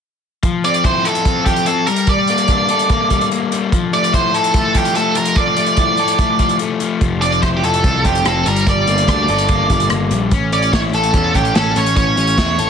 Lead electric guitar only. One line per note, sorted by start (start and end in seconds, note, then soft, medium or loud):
0.65 0.85 D5 medium
0.85 1.06 C5 medium
1.05 1.43 A4 medium
1.45 1.67 G4 medium
1.67 1.86 A4 medium
1.87 2.06 A#4 medium
2.09 3.28 D5 medium
3.94 4.14 D5 loud
4.14 4.35 C5 loud
4.35 4.76 A4 medium
4.77 4.96 G4 medium
4.96 5.15 A4 medium
5.17 5.36 A#4 medium
5.37 6.57 D5 medium
7.21 7.42 D5 medium
7.42 7.47 C5 loud
7.57 7.64 G4 medium
7.65 8.05 A4 medium
8.06 8.27 G4 medium
8.28 8.47 A4 medium
8.48 8.66 A#4 medium
8.69 9.88 D5 medium
10.53 10.73 D5 medium
10.73 10.79 C#5 loud
10.95 11.35 A4 medium
11.36 11.55 G4 medium
11.56 11.77 A4 medium
11.77 11.95 C#5 medium
11.97 12.70 C#5 medium